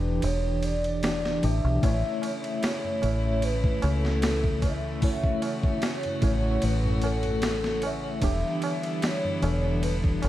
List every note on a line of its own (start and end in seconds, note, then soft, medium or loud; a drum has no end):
0.00 0.19 E1 loud
0.00 1.03 E3 medium
0.00 1.04 D4 medium
0.00 1.05 G4 medium
0.00 0.25 B4 loud
0.22 1.43 E1 medium
0.22 0.66 C#5 loud
0.22 ride medium
0.63 1.45 D5 loud
0.63 ride medium
0.84 ride soft
1.03 1.39 E3 medium
1.03 1.39 D4 medium
1.03 1.39 G4 medium
1.03 snare loud
1.03 ride medium
1.25 snare soft
1.43 1.62 A1 medium
1.43 1.78 E3 medium
1.43 1.79 D4 medium
1.43 1.79 G4 medium
1.43 2.63 E5 loud
1.43 ride medium
1.64 1.81 B1 medium
1.82 2.02 A1 loud
1.82 8.19 C#3 medium
1.82 8.20 E3 medium
1.82 2.98 A3 medium
1.82 8.19 A3 medium
1.82 2.99 E4 medium
1.82 5.00 E4 medium
1.82 3.00 C#5 loud
1.82 kick loud
1.82 ride medium
1.82 tabla na medium
2.04 tabla na soft
2.22 ride medium
2.22 tabla na loud
2.44 ride soft
2.44 tabla na soft
2.63 3.45 C#5 loud
2.63 snare loud
2.63 ride medium
2.63 tabla na medium
2.83 tabla na soft
2.83 tabla ge medium
3.02 3.80 A1 loud
3.02 4.98 A3 medium
3.02 4.99 E4 medium
3.02 5.00 E5 medium
3.02 ride medium
3.02 tabla na loud
3.23 tabla na soft
3.42 3.83 B4 medium
3.42 ride medium
3.42 tabla na medium
3.64 kick loud
3.64 tabla na soft
3.82 5.40 C#2 loud
3.82 4.65 A4 medium
3.82 ride medium
3.82 tabla na loud
4.04 snare soft
4.04 tabla na soft
4.22 snare loud
4.22 ride loud
4.22 tabla na soft
4.44 kick loud
4.44 tabla na soft
4.62 5.85 E5 loud
4.62 kick medium
4.62 ride medium
4.62 tabla na medium
4.84 tabla na soft
5.02 6.18 A3 medium
5.02 6.18 E4 medium
5.02 8.20 F#4 medium
5.02 6.19 C#5 medium
5.02 kick loud
5.02 open hi-hat medium
5.02 tabla na soft
5.23 kick medium
5.23 tabla na soft
5.42 ride medium
5.42 tabla na loud
5.63 kick loud
5.63 tabla na soft
5.82 6.65 C#5 loud
5.82 snare loud
5.82 ride medium
5.82 tabla na medium
6.03 ride soft
6.03 tabla na soft
6.03 tabla ge medium
6.21 6.58 A1 loud
6.21 8.18 A3 medium
6.21 8.18 E4 medium
6.21 8.19 C#5 medium
6.21 kick medium
6.21 ride medium
6.21 tabla na medium
6.46 tabla na soft
6.62 8.19 A1 medium
6.62 7.06 B4 medium
6.62 ride medium
6.62 tabla na soft
6.85 tabla na soft
6.85 tabla ge medium
7.02 7.85 A4 loud
7.02 ride medium
7.02 tabla na medium
7.23 ride soft
7.23 tabla na soft
7.23 tabla ge medium
7.42 snare loud
7.42 ride medium
7.42 tabla na medium
7.64 snare medium
7.64 tabla na soft
7.82 9.05 E5 loud
7.82 ride medium
7.82 tabla na medium
8.04 tabla na soft
8.21 8.42 E1 loud
8.21 10.29 D3 medium
8.21 9.37 E3 medium
8.21 10.29 G3 medium
8.21 10.29 B3 medium
8.21 9.38 D4 medium
8.21 10.29 E4 medium
8.21 9.39 G4 loud
8.21 kick loud
8.21 ride loud
8.21 tabla na soft
8.44 tabla na soft
8.62 ride medium
8.62 tabla na medium
8.83 ride soft
8.83 tabla na soft
9.02 9.82 C#5 loud
9.02 snare loud
9.02 ride medium
9.02 tabla na medium
9.24 tabla na soft
9.24 tabla ge medium
9.42 10.20 E1 loud
9.42 10.29 E3 medium
9.42 10.29 D4 medium
9.42 10.29 A4 medium
9.42 ride medium
9.42 tabla na medium
9.63 tabla na soft
9.82 9.97 B4 medium
9.82 ride medium
9.82 tabla na medium
10.04 kick loud
10.04 tabla na soft
10.22 10.29 G1 loud
10.22 10.29 A4 medium
10.22 ride medium
10.22 tabla na medium